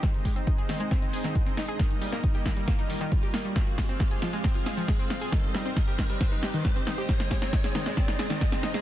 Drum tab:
HH |xxoxxxoxxxoxxxox|xxo-xxoxxxoxxxox|xxoxxxoxxxoxxxox|xxoxxxoxxxoxxxox|
SH |----------------|----------------|x-xxxxxxx-xxxxxx|x-xxxxxxx-xxxxxx|
SD |o-----o-o--o--o-|o--o--o-o-----o-|o-o-o-o-o-o-o-o-|o-o-o-o-o-o-o-o-|
BD |o-o-o---o---o---|o---o-o-o---o---|o-o-o---o---o---|o---o-o-o---o---|

HH |xxoxxxoxxxoxxxox|
SH |x-xxxxxxx-xxxxxx|
SD |oooooooooooooooo|
BD |o-o-o---o---o---|